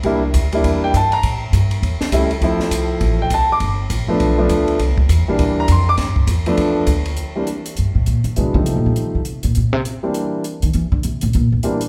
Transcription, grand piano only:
X:1
M:4/4
L:1/8
Q:"Swing" 1/4=202
K:Cmix
V:1 name="Grand piano"
z4 z g a b | z8 | z4 z g a d' | z8 |
z4 z b c' d' | z8 | z8 | z8 |
z8 | z8 |]
V:2 name="Grand piano"
[G,B,DE] z2 [G,B,DE]3 z2 | z6 [G,A,^CE] z | [F,A,CE]4- [F,A,CE] z3 | z3 [F,A,=B,D]2 [F,A,B,D]3 |
z3 [E,G,B,D]3 z2 | z3 [F,A,=B,D]3 z2 | z [E,G,B,CD] z6 | [E,^F,_A,=B,D] [=F,G,=A,C_E]4 z3 |
z3 [E,G,B,CD]3 z2 | z6 [E,G,B,CD] z |]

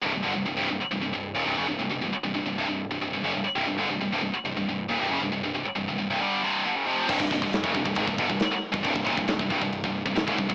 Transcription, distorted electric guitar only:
X:1
M:4/4
L:1/16
Q:1/4=136
K:Cm
V:1 name="Distorted electric guitar" clef=bass
[C,,G,,] [C,,G,,] [G,,D,] [C,,G,,] [C,,G,,] [C,,G,,] [C,,G,,] z [C,,G,,] [C,,G,,] [C,,G,,]2 [E,,B,,] [C,,G,,] [^F,,_D,] [C,,G,,] | [C,,G,,] [C,,G,,] [C,,G,,] z [C,,G,,] [C,,G,,] [C,,G,,] [C,,G,,] [C,,G,,]2 [C,,G,,] [C,,G,,] [C,,G,,] [^F,,_D,] [C,,G,,] z | [C,,G,,] [C,,G,,] [G,,D,] [C,,G,,] [C,,G,,] [C,,G,,] [C,,G,,] z [C,,G,,] [C,,G,,] [C,,G,,]2 [E,,B,,] [C,,G,,] [^F,,_D,] [C,,G,,] | [C,,G,,] [C,,G,,] [C,,G,,] z [C,,G,,] [C,,G,,] [C,,G,,] [C,,G,,] [G,,D,G,]2 [C,,G,,C,]2 [G,,D,] [^F,,_D,] [=F,,C,F,]2 |
[C,,G,,] [C,,G,,] [C,,G,,] [C,,G,,]2 [^F,,_D,] [C,,G,,] [C,,G,,] [A,,E,] [C,,G,,] [G,,=D,] [C,,G,,] z3 [C,,G,,] | [C,,G,,] [C,,G,,] [E,,B,,] [C,,G,,] [C,,G,,] [C,,G,,] [C,,G,,] [C,,G,,]2 [C,,G,,]2 [C,,G,,] [C,,G,,] [_D,,A,,] [C,,G,,] [C,,G,,] |]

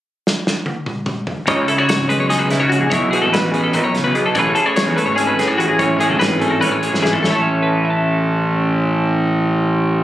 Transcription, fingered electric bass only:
X:1
M:7/8
L:1/16
Q:1/4=146
K:Alyd
V:1 name="Fingered electric bass" clef=bass
z12 z2 | C,,2 z3 G,,, z B,,,3 C,3 _B,,, | B,,,2 B,, A,,,4- A,,, B,, B,,,2 B,,,3 | A,,,2 z3 E,, z G,,,3 A,,3 A,,,- |
A,,,2 A,, G,,,4- G,,, A,, A,,,2 G,,,3 | A,,,12- A,,,2- | A,,,12- A,,,2 |]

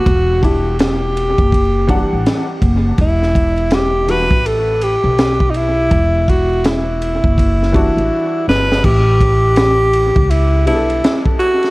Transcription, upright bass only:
X:1
M:4/4
L:1/16
Q:"Swing 16ths" 1/4=82
K:Em
V:1 name="Upright bass" clef=bass
E,,,6- E,,, F,,,4 A,,, z2 F,,,2 | E,,,6- E,,, A,,,4 B,,,4- B,,, | E,,,6- E,,, F,,,4 A,,, z2 G,,,2 | A,,,6- A,,, ^C,,3 B,,,2 z4 |]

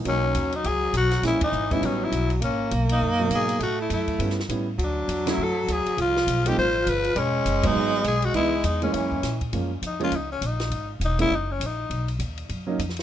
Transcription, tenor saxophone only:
X:1
M:4/4
L:1/8
Q:"Swing" 1/4=203
K:B
V:1 name="Tenor saxophone"
C3 D G2 F2 | E D2 E C E2 z | C2 z D3 G2 | F E E3 z3 |
=D3 E =A2 G2 | =F3 =G =c2 B2 | C3 D3 G F | E2 D C4 z |
[K:F#] z2 D E D C D2- | D z D =E D C D2- | D z6 z |]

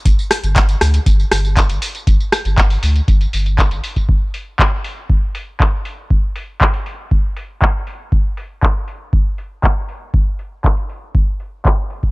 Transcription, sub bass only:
X:1
M:4/4
L:1/16
Q:1/4=119
K:Cm
V:1 name="Sub bass" clef=bass
G,,, z2 G,,,3 D,, z G,,, z G,,,3 G,,, z2 | G,,, z2 G,,,3 D,, z G,,, z G,,,3 G,,, z2 | z16 | z16 |
z16 | z16 |]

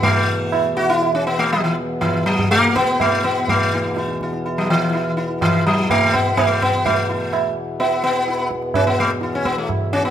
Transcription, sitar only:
X:1
M:7/4
L:1/16
Q:1/4=124
K:none
V:1 name="Sitar"
z4 E2 z16 z6 | z2 E2 E2 E2 E2 z2 E2 E2 z12 | z2 E2 E2 z6 E2 z6 E2 z6 |]
V:2 name="Sitar"
A,6 ^F E2 ^C B, A, ^F, E, z2 E,2 F,2 A,2 B,2 A,2 B,2 | A,6 z3 ^F, E,4- E, z E,2 F,2 A,2 B,2 A,2 B,2 | A,6 z2 B,2 B,4 z2 ^C B, A, z2 C B, A, z2 C B, |]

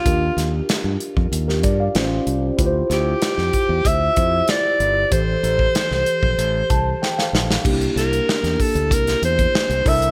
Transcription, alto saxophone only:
X:1
M:4/4
L:1/8
Q:1/4=95
K:Cmix
V:1 name="Alto saxophone"
F2 z6 | z G3 e2 d2 | c6- c z | z B2 A B c2 e |]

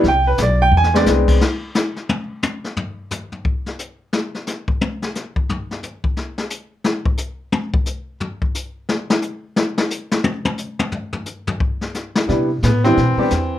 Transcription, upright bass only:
X:1
M:4/4
L:1/8
Q:"Swing" 1/4=176
K:Ephr
V:1 name="Upright bass" clef=bass
C,,2 B,,,2 E,,2 C,,2 | [K:C] z8 | z8 | z8 |
z8 | z8 | z8 | z8 |
z8 | C,2 A,,2 B,, z E,,2 |]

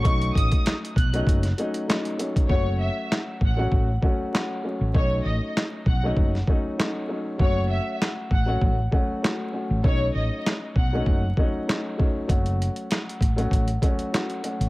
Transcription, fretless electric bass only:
X:1
M:4/4
L:1/16
Q:"Swing 16ths" 1/4=98
K:F#dor
V:1 name="Fretless electric bass" clef=bass
B,,,2 A,,, z3 B,,,2 F,,,2 z6 | F,,,3 z3 A,,,2 A,,,2 z4 z A,,, | B,,,2 A,,, z3 B,,,2 F,,,2 z6 | F,,,3 z3 A,,,2 A,,,2 z4 z A,,, |
B,,,2 A,,, z3 B,,,2 F,,,2 z6 | F,,,3 z3 A,,,2 A,,,2 z4 z A,,, |]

